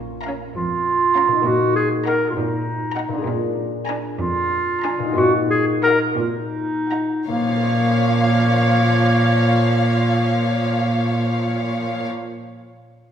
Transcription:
Already playing: cello section A#2, harp A#2 C#4 F4 A#4
0.24 viola section C#4, violin section F5 A#5
0.55 cello section F2, clarinet F4
1.16 viola section C#4, violin section F5 A#5
1.28 harp A#2
1.32 harp D#4
1.37 harp F#4
1.41 harp A#4
1.46 cello section A#2, clarinet F#4
1.76 clarinet G#4
2.06 viola section D#4, clarinet A#4, violin section F#5 A#5
2.29 clarinet F4
2.35 cello section A#2, clarinet D#4
2.95 viola section D#4, violin section F#5 A#5
3.08 harp A#2
3.13 harp D4
3.18 harp G#4
3.22 harp A#4
3.27 cello section A#2
3.87 viola section D4, violin section G#5 A#5
4.20 cello section F2, clarinet F4
4.82 viola section D4, violin section G#5 A#5
4.99 harp A#2
5.03 harp D#4
5.08 harp F#4
5.12 harp A#4
5.17 cello section A#2, clarinet F#4
5.50 clarinet G#4
5.83 viola section D#4, clarinet A#4, violin section F#5 A#5
6.19 cello section A#2, clarinet D#4
6.91 viola section D#4, violin section F#5 A#5
7.27 cello section A#2, harp A#2, viola section F3, clarinet A#3, violin section C#5 F5
7.35 harp A#3
7.42 harp C#4
7.49 harp F4
7.56 harp A#4
7.63 harp F5

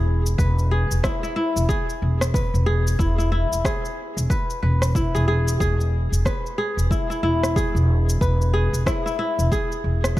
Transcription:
Already playing: upright bass E1, kora E4 G#4
0.26 shaker
0.38 upright bass E1, kora B4, kick, shaker
0.59 shaker
0.71 kora G#4
0.91 upright bass E1, shaker
1.03 kora E4, kick, cross-stick, shaker
1.23 kora E4, shaker
1.36 kora E4
1.56 upright bass E1, shaker
1.69 kora G#4, kick, shaker
1.90 shaker
2.02 upright bass E1
2.21 cross-stick, shaker
2.34 kora B4, kick, shaker
2.54 upright bass E1, shaker
2.66 kora G#4
2.87 shaker
2.99 upright bass E1, kora E4, kick, shaker
3.18 kora E4, shaker
3.32 kora E4
3.52 upright bass E1, shaker
3.65 kora G#4, kick, cross-stick, shaker
3.85 shaker
4.17 upright bass E1, shaker
4.30 kora B4, kick, shaker
4.50 shaker
4.62 upright bass E1, kora B4
4.82 cross-stick, shaker
4.95 kora E4, kick, shaker
5.15 upright bass E1, kora G#4, shaker
5.28 kora G#4
5.48 shaker
5.60 upright bass E1, kora G#4, kick, shaker
5.81 shaker
6.12 upright bass E1, shaker
6.25 kora B4, kick, cross-stick, shaker
6.46 shaker
6.58 kora G#4
6.77 upright bass E1, shaker
6.91 kora E4, kick, shaker
7.10 kora E4, shaker
7.23 upright bass E1, kora E4
7.43 cross-stick, shaker
7.56 kora G#4, kick, shaker
7.75 upright bass E1, shaker
8.09 shaker
8.21 upright bass E1, kora B4, kick, shaker
8.42 shaker
8.54 kora G#4
8.73 upright bass E1, shaker
8.86 kora E4, kick, cross-stick, shaker
9.06 kora E4, shaker
9.19 kora E4
9.39 upright bass E1, shaker
9.52 kora G#4, kick, shaker
9.72 shaker
9.84 upright bass E1
10.04 cross-stick, shaker

